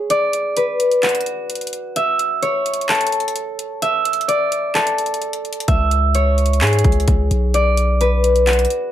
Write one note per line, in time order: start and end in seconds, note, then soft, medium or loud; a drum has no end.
0.00 1.45 G#4 medium
0.00 0.16 C#5 medium
0.10 1.95 D5 loud
0.10 closed hi-hat medium
0.33 closed hi-hat medium
0.57 2.62 B4 medium
0.57 closed hi-hat medium
0.80 closed hi-hat medium
0.91 closed hi-hat soft
1.03 3.47 F#4 medium
1.03 clap loud
1.03 closed hi-hat medium
1.09 closed hi-hat medium
1.15 closed hi-hat medium
1.21 closed hi-hat soft
1.26 closed hi-hat medium
1.50 closed hi-hat medium
1.55 closed hi-hat medium
1.61 closed hi-hat medium
1.67 closed hi-hat medium
1.73 closed hi-hat medium
1.96 3.68 E5 loud
1.96 closed hi-hat medium
2.19 closed hi-hat medium
2.42 4.34 C#5 medium
2.42 closed hi-hat medium
2.66 closed hi-hat medium
2.74 closed hi-hat medium
2.81 closed hi-hat medium
2.89 4.74 A4 medium
2.89 clap loud
2.89 closed hi-hat soft
2.95 closed hi-hat medium
3.01 closed hi-hat medium
3.07 closed hi-hat medium
3.12 closed hi-hat medium
3.20 closed hi-hat medium
3.28 closed hi-hat medium
3.36 closed hi-hat medium
3.59 closed hi-hat medium
3.82 5.54 E5 loud
3.82 closed hi-hat medium
4.05 closed hi-hat medium
4.05 open hi-hat medium
4.13 closed hi-hat medium
4.21 closed hi-hat soft
4.28 6.13 D5 medium
4.28 closed hi-hat medium
4.52 closed hi-hat medium
4.75 6.68 A4 medium
4.75 clap medium
4.75 closed hi-hat medium
4.87 closed hi-hat medium
4.98 closed hi-hat medium
5.06 closed hi-hat medium
5.14 closed hi-hat medium
5.22 closed hi-hat soft
5.33 closed hi-hat medium
5.45 closed hi-hat soft
5.53 closed hi-hat medium
5.60 closed hi-hat medium
5.68 6.63 C#2 loud
5.68 7.40 E5 loud
5.68 kick loud
5.68 closed hi-hat medium
5.91 closed hi-hat medium
6.15 7.60 C#5 medium
6.15 closed hi-hat medium
6.38 closed hi-hat medium
6.46 closed hi-hat medium
6.53 closed hi-hat medium
6.61 6.83 G#2 loud
6.61 8.89 G#4 medium
6.61 clap loud
6.61 closed hi-hat soft
6.67 closed hi-hat medium
6.73 closed hi-hat medium
6.79 closed hi-hat medium
6.84 7.07 C#2 loud
6.84 kick loud
6.84 closed hi-hat medium
6.92 closed hi-hat medium
7.00 closed hi-hat medium
7.08 7.30 C#2 loud
7.08 kick medium
7.08 closed hi-hat medium
7.31 8.66 B1 loud
7.31 closed hi-hat medium
7.54 8.92 D5 loud
7.54 closed hi-hat medium
7.77 closed hi-hat medium
8.01 8.92 B4 medium
8.01 closed hi-hat medium
8.24 closed hi-hat medium
8.36 closed hi-hat soft
8.47 8.92 F#4 medium
8.47 clap loud
8.47 closed hi-hat medium
8.53 closed hi-hat medium
8.59 closed hi-hat medium
8.65 closed hi-hat soft
8.70 closed hi-hat medium